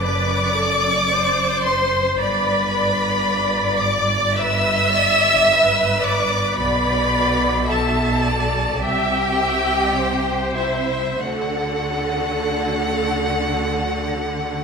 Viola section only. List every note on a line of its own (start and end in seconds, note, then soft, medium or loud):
0.01 0.56 B4 medium
0.56 1.11 A4 medium
1.10 2.17 C5 loud
2.19 2.72 D5 medium
2.74 4.34 D5 medium
4.37 4.93 B4 medium
4.93 5.50 D5 medium
5.49 6.58 B4 medium
6.59 7.66 D5 loud
7.68 8.24 E5 medium
8.25 8.82 D5 medium
8.81 9.37 E5 loud
9.38 9.96 E5 medium
9.97 11.23 C5 medium
11.23 14.64 A4 medium